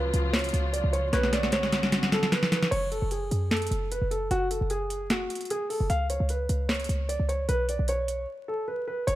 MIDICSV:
0, 0, Header, 1, 6, 480
1, 0, Start_track
1, 0, Key_signature, 3, "minor"
1, 0, Tempo, 397351
1, 1364, Time_signature, 4, 2, 24, 8
1, 11058, End_track
2, 0, Start_track
2, 0, Title_t, "Synth pluck"
2, 0, Program_c, 0, 84
2, 0, Note_on_c, 0, 77, 85
2, 354, Note_off_c, 0, 77, 0
2, 1364, Note_on_c, 0, 73, 101
2, 2276, Note_off_c, 0, 73, 0
2, 11058, End_track
3, 0, Start_track
3, 0, Title_t, "Grand piano"
3, 0, Program_c, 1, 0
3, 0, Note_on_c, 1, 71, 83
3, 378, Note_off_c, 1, 71, 0
3, 399, Note_on_c, 1, 73, 78
3, 853, Note_off_c, 1, 73, 0
3, 882, Note_on_c, 1, 74, 81
3, 1071, Note_off_c, 1, 74, 0
3, 1122, Note_on_c, 1, 73, 86
3, 1311, Note_off_c, 1, 73, 0
3, 1363, Note_on_c, 1, 71, 107
3, 1551, Note_off_c, 1, 71, 0
3, 1613, Note_on_c, 1, 74, 84
3, 1798, Note_off_c, 1, 74, 0
3, 1848, Note_on_c, 1, 73, 96
3, 2297, Note_off_c, 1, 73, 0
3, 2566, Note_on_c, 1, 69, 89
3, 2753, Note_off_c, 1, 69, 0
3, 2802, Note_on_c, 1, 71, 84
3, 2991, Note_off_c, 1, 71, 0
3, 3040, Note_on_c, 1, 71, 87
3, 3230, Note_off_c, 1, 71, 0
3, 3277, Note_on_c, 1, 73, 115
3, 3467, Note_off_c, 1, 73, 0
3, 3522, Note_on_c, 1, 69, 82
3, 3711, Note_off_c, 1, 69, 0
3, 3764, Note_on_c, 1, 68, 77
3, 4215, Note_off_c, 1, 68, 0
3, 4237, Note_on_c, 1, 69, 86
3, 4692, Note_off_c, 1, 69, 0
3, 4729, Note_on_c, 1, 71, 84
3, 4915, Note_off_c, 1, 71, 0
3, 4963, Note_on_c, 1, 69, 81
3, 5152, Note_off_c, 1, 69, 0
3, 5205, Note_on_c, 1, 66, 118
3, 5393, Note_off_c, 1, 66, 0
3, 5445, Note_on_c, 1, 69, 76
3, 5633, Note_off_c, 1, 69, 0
3, 5685, Note_on_c, 1, 68, 88
3, 6136, Note_off_c, 1, 68, 0
3, 6165, Note_on_c, 1, 66, 73
3, 6616, Note_off_c, 1, 66, 0
3, 6652, Note_on_c, 1, 68, 93
3, 6837, Note_off_c, 1, 68, 0
3, 6881, Note_on_c, 1, 69, 83
3, 7070, Note_off_c, 1, 69, 0
3, 7123, Note_on_c, 1, 77, 101
3, 7312, Note_off_c, 1, 77, 0
3, 7367, Note_on_c, 1, 73, 76
3, 7554, Note_off_c, 1, 73, 0
3, 7609, Note_on_c, 1, 71, 77
3, 8058, Note_off_c, 1, 71, 0
3, 8078, Note_on_c, 1, 73, 78
3, 8532, Note_off_c, 1, 73, 0
3, 8561, Note_on_c, 1, 74, 81
3, 8750, Note_off_c, 1, 74, 0
3, 8802, Note_on_c, 1, 73, 82
3, 8991, Note_off_c, 1, 73, 0
3, 9042, Note_on_c, 1, 71, 104
3, 9231, Note_off_c, 1, 71, 0
3, 9292, Note_on_c, 1, 74, 82
3, 9477, Note_off_c, 1, 74, 0
3, 9528, Note_on_c, 1, 73, 92
3, 9977, Note_off_c, 1, 73, 0
3, 10247, Note_on_c, 1, 69, 85
3, 10434, Note_off_c, 1, 69, 0
3, 10483, Note_on_c, 1, 71, 82
3, 10671, Note_off_c, 1, 71, 0
3, 10721, Note_on_c, 1, 71, 85
3, 10910, Note_off_c, 1, 71, 0
3, 10958, Note_on_c, 1, 73, 118
3, 11058, Note_off_c, 1, 73, 0
3, 11058, End_track
4, 0, Start_track
4, 0, Title_t, "String section"
4, 0, Program_c, 2, 48
4, 0, Note_on_c, 2, 49, 81
4, 0, Note_on_c, 2, 53, 72
4, 0, Note_on_c, 2, 54, 73
4, 0, Note_on_c, 2, 65, 89
4, 1316, Note_off_c, 2, 49, 0
4, 1316, Note_off_c, 2, 54, 0
4, 1345, Note_off_c, 2, 53, 0
4, 1345, Note_off_c, 2, 65, 0
4, 1365, Note_on_c, 2, 50, 80
4, 1365, Note_on_c, 2, 59, 71
4, 1365, Note_on_c, 2, 61, 71
4, 1365, Note_on_c, 2, 66, 87
4, 3265, Note_off_c, 2, 59, 0
4, 3265, Note_off_c, 2, 61, 0
4, 3265, Note_off_c, 2, 66, 0
4, 3266, Note_off_c, 2, 50, 0
4, 11058, End_track
5, 0, Start_track
5, 0, Title_t, "808-style bass"
5, 0, Program_c, 3, 38
5, 0, Note_on_c, 3, 37, 110
5, 150, Note_off_c, 3, 37, 0
5, 165, Note_on_c, 3, 37, 104
5, 625, Note_off_c, 3, 37, 0
5, 645, Note_on_c, 3, 37, 106
5, 997, Note_off_c, 3, 37, 0
5, 1011, Note_on_c, 3, 37, 103
5, 1350, Note_off_c, 3, 37, 0
5, 1364, Note_on_c, 3, 35, 115
5, 2756, Note_off_c, 3, 35, 0
5, 3284, Note_on_c, 3, 30, 113
5, 3637, Note_off_c, 3, 30, 0
5, 3650, Note_on_c, 3, 30, 105
5, 3990, Note_off_c, 3, 30, 0
5, 4004, Note_on_c, 3, 42, 102
5, 4465, Note_off_c, 3, 42, 0
5, 4484, Note_on_c, 3, 30, 100
5, 4837, Note_off_c, 3, 30, 0
5, 4851, Note_on_c, 3, 30, 105
5, 5190, Note_off_c, 3, 30, 0
5, 5204, Note_on_c, 3, 30, 112
5, 5557, Note_off_c, 3, 30, 0
5, 5571, Note_on_c, 3, 30, 106
5, 6371, Note_off_c, 3, 30, 0
5, 7011, Note_on_c, 3, 30, 105
5, 7117, Note_off_c, 3, 30, 0
5, 7124, Note_on_c, 3, 37, 111
5, 7477, Note_off_c, 3, 37, 0
5, 7492, Note_on_c, 3, 37, 104
5, 7830, Note_off_c, 3, 37, 0
5, 7845, Note_on_c, 3, 37, 103
5, 8305, Note_off_c, 3, 37, 0
5, 8324, Note_on_c, 3, 37, 99
5, 8677, Note_off_c, 3, 37, 0
5, 8692, Note_on_c, 3, 37, 100
5, 9030, Note_off_c, 3, 37, 0
5, 9044, Note_on_c, 3, 35, 111
5, 9397, Note_off_c, 3, 35, 0
5, 9412, Note_on_c, 3, 35, 105
5, 9981, Note_off_c, 3, 35, 0
5, 10964, Note_on_c, 3, 30, 108
5, 11058, Note_off_c, 3, 30, 0
5, 11058, End_track
6, 0, Start_track
6, 0, Title_t, "Drums"
6, 164, Note_on_c, 9, 42, 78
6, 285, Note_off_c, 9, 42, 0
6, 405, Note_on_c, 9, 38, 125
6, 405, Note_on_c, 9, 42, 50
6, 469, Note_off_c, 9, 42, 0
6, 469, Note_on_c, 9, 42, 59
6, 525, Note_off_c, 9, 38, 0
6, 532, Note_off_c, 9, 42, 0
6, 532, Note_on_c, 9, 42, 68
6, 588, Note_off_c, 9, 42, 0
6, 588, Note_on_c, 9, 42, 79
6, 649, Note_off_c, 9, 42, 0
6, 649, Note_on_c, 9, 42, 82
6, 769, Note_off_c, 9, 42, 0
6, 889, Note_on_c, 9, 42, 96
6, 1010, Note_off_c, 9, 42, 0
6, 1129, Note_on_c, 9, 42, 75
6, 1250, Note_off_c, 9, 42, 0
6, 1364, Note_on_c, 9, 42, 86
6, 1365, Note_on_c, 9, 38, 67
6, 1485, Note_off_c, 9, 42, 0
6, 1486, Note_off_c, 9, 38, 0
6, 1492, Note_on_c, 9, 38, 59
6, 1604, Note_off_c, 9, 38, 0
6, 1604, Note_on_c, 9, 38, 70
6, 1605, Note_on_c, 9, 42, 85
6, 1725, Note_off_c, 9, 38, 0
6, 1726, Note_off_c, 9, 42, 0
6, 1732, Note_on_c, 9, 38, 61
6, 1838, Note_on_c, 9, 42, 88
6, 1845, Note_off_c, 9, 38, 0
6, 1845, Note_on_c, 9, 38, 78
6, 1959, Note_off_c, 9, 42, 0
6, 1965, Note_off_c, 9, 38, 0
6, 1972, Note_on_c, 9, 38, 69
6, 2083, Note_on_c, 9, 42, 78
6, 2085, Note_off_c, 9, 38, 0
6, 2085, Note_on_c, 9, 38, 85
6, 2204, Note_off_c, 9, 42, 0
6, 2205, Note_off_c, 9, 38, 0
6, 2211, Note_on_c, 9, 38, 76
6, 2322, Note_on_c, 9, 42, 84
6, 2324, Note_off_c, 9, 38, 0
6, 2324, Note_on_c, 9, 38, 97
6, 2443, Note_off_c, 9, 42, 0
6, 2445, Note_off_c, 9, 38, 0
6, 2451, Note_on_c, 9, 38, 81
6, 2564, Note_off_c, 9, 38, 0
6, 2564, Note_on_c, 9, 38, 99
6, 2564, Note_on_c, 9, 42, 76
6, 2685, Note_off_c, 9, 38, 0
6, 2685, Note_off_c, 9, 42, 0
6, 2691, Note_on_c, 9, 38, 85
6, 2691, Note_on_c, 9, 42, 43
6, 2804, Note_off_c, 9, 38, 0
6, 2804, Note_on_c, 9, 38, 106
6, 2808, Note_off_c, 9, 42, 0
6, 2808, Note_on_c, 9, 42, 93
6, 2924, Note_off_c, 9, 38, 0
6, 2929, Note_off_c, 9, 42, 0
6, 2931, Note_on_c, 9, 38, 93
6, 3044, Note_off_c, 9, 38, 0
6, 3044, Note_on_c, 9, 38, 113
6, 3048, Note_on_c, 9, 42, 78
6, 3165, Note_off_c, 9, 38, 0
6, 3169, Note_off_c, 9, 42, 0
6, 3171, Note_on_c, 9, 38, 101
6, 3284, Note_on_c, 9, 42, 85
6, 3284, Note_on_c, 9, 49, 97
6, 3292, Note_off_c, 9, 38, 0
6, 3405, Note_off_c, 9, 42, 0
6, 3405, Note_off_c, 9, 49, 0
6, 3525, Note_on_c, 9, 42, 87
6, 3646, Note_off_c, 9, 42, 0
6, 3758, Note_on_c, 9, 42, 78
6, 3879, Note_off_c, 9, 42, 0
6, 4003, Note_on_c, 9, 42, 77
6, 4124, Note_off_c, 9, 42, 0
6, 4244, Note_on_c, 9, 38, 118
6, 4244, Note_on_c, 9, 42, 46
6, 4308, Note_off_c, 9, 42, 0
6, 4308, Note_on_c, 9, 42, 57
6, 4364, Note_off_c, 9, 38, 0
6, 4372, Note_off_c, 9, 42, 0
6, 4372, Note_on_c, 9, 42, 65
6, 4428, Note_off_c, 9, 42, 0
6, 4428, Note_on_c, 9, 42, 76
6, 4489, Note_off_c, 9, 42, 0
6, 4489, Note_on_c, 9, 42, 79
6, 4610, Note_off_c, 9, 42, 0
6, 4729, Note_on_c, 9, 42, 90
6, 4850, Note_off_c, 9, 42, 0
6, 4969, Note_on_c, 9, 42, 75
6, 5089, Note_off_c, 9, 42, 0
6, 5204, Note_on_c, 9, 42, 85
6, 5325, Note_off_c, 9, 42, 0
6, 5445, Note_on_c, 9, 42, 82
6, 5566, Note_off_c, 9, 42, 0
6, 5678, Note_on_c, 9, 42, 83
6, 5799, Note_off_c, 9, 42, 0
6, 5924, Note_on_c, 9, 42, 77
6, 6044, Note_off_c, 9, 42, 0
6, 6162, Note_on_c, 9, 42, 82
6, 6164, Note_on_c, 9, 38, 119
6, 6283, Note_off_c, 9, 42, 0
6, 6285, Note_off_c, 9, 38, 0
6, 6404, Note_on_c, 9, 42, 75
6, 6468, Note_off_c, 9, 42, 0
6, 6468, Note_on_c, 9, 42, 65
6, 6531, Note_off_c, 9, 42, 0
6, 6531, Note_on_c, 9, 42, 55
6, 6587, Note_off_c, 9, 42, 0
6, 6587, Note_on_c, 9, 42, 45
6, 6648, Note_off_c, 9, 42, 0
6, 6648, Note_on_c, 9, 42, 90
6, 6769, Note_off_c, 9, 42, 0
6, 6888, Note_on_c, 9, 46, 58
6, 7009, Note_off_c, 9, 46, 0
6, 7124, Note_on_c, 9, 42, 86
6, 7244, Note_off_c, 9, 42, 0
6, 7365, Note_on_c, 9, 42, 86
6, 7486, Note_off_c, 9, 42, 0
6, 7597, Note_on_c, 9, 42, 77
6, 7718, Note_off_c, 9, 42, 0
6, 7843, Note_on_c, 9, 42, 80
6, 7964, Note_off_c, 9, 42, 0
6, 8084, Note_on_c, 9, 38, 122
6, 8084, Note_on_c, 9, 42, 48
6, 8147, Note_off_c, 9, 42, 0
6, 8147, Note_on_c, 9, 42, 57
6, 8204, Note_off_c, 9, 38, 0
6, 8211, Note_off_c, 9, 42, 0
6, 8211, Note_on_c, 9, 42, 68
6, 8267, Note_off_c, 9, 42, 0
6, 8267, Note_on_c, 9, 42, 76
6, 8328, Note_off_c, 9, 42, 0
6, 8328, Note_on_c, 9, 42, 83
6, 8448, Note_off_c, 9, 42, 0
6, 8568, Note_on_c, 9, 42, 92
6, 8689, Note_off_c, 9, 42, 0
6, 8808, Note_on_c, 9, 42, 74
6, 8929, Note_off_c, 9, 42, 0
6, 9044, Note_on_c, 9, 42, 86
6, 9165, Note_off_c, 9, 42, 0
6, 9285, Note_on_c, 9, 42, 79
6, 9406, Note_off_c, 9, 42, 0
6, 9518, Note_on_c, 9, 42, 86
6, 9639, Note_off_c, 9, 42, 0
6, 9763, Note_on_c, 9, 42, 78
6, 9884, Note_off_c, 9, 42, 0
6, 10964, Note_on_c, 9, 42, 89
6, 11058, Note_off_c, 9, 42, 0
6, 11058, End_track
0, 0, End_of_file